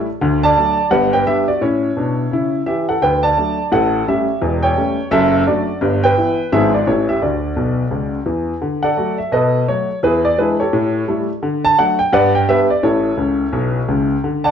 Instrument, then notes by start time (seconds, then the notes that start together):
upright piano
0.21 D2 D3
0.43 D5 A5
0.57 F#3 A3 D4
0.91 G1 G2 B4 F#5
1.13 B4 G5
1.27 G3 B3 D4 G4 E5
1.48 F#4 D5
1.61 A2 C#4 E4 C#5
1.97 B2 D4
2.31 C#3 E4
2.66 E3 G4 E5
2.89 A4 F#5
3.02 D2 D3 B4 G5
3.23 D5 A5
3.37 F#3 A3 D4
3.72 A1 A2 A4 F#5
4.08 G3 A3 C#4 G4 E5
4.42 E1 E2
4.63 C#5 G5
4.77 G3 A3 C#4
5.11 F#1 F#2 A4 E5
5.47 F#3 A3 D4 F#4 D5
5.81 G1 G2
6.04 B4 G5
6.18 E3 B3 E4
6.52 G#1 G#2 F3 B3 D4 G#4 E5
6.74 F4 D5
6.87 A1 A2 E3 A3 E4 C#5
7.09 G4 E5
7.22 D2 D3 F#4 D5
7.56 B1 B2
7.91 C#2 C#3
8.26 E2 E3
8.62 D3
8.83 A4 D5 F#5
8.97 F#3 A3 F#4
9.18 E5
9.32 B2 A4 B4 D#5
9.68 F#3 A3 F#4 C#5
10.03 E2 E4 G#4 B4
10.25 D5
10.38 E3 G#3 D4 E4 G#4 B4
10.60 G4 A4 C#5
10.73 A2
11.08 G3 A3 E4
11.43 D3
11.65 A5
11.78 F#3 A3 D4 F#5
11.99 G5
12.13 G2 B4 D5 F#5
12.35 G5
12.48 G3 B3 D4 G4 B4 E5
12.70 D5
12.83 A1 A2 E4 A4 C#5
13.17 C#2 C#3
13.52 B1 B2
13.88 C#2 C#3
14.24 D3
14.44 D5 F#5 A5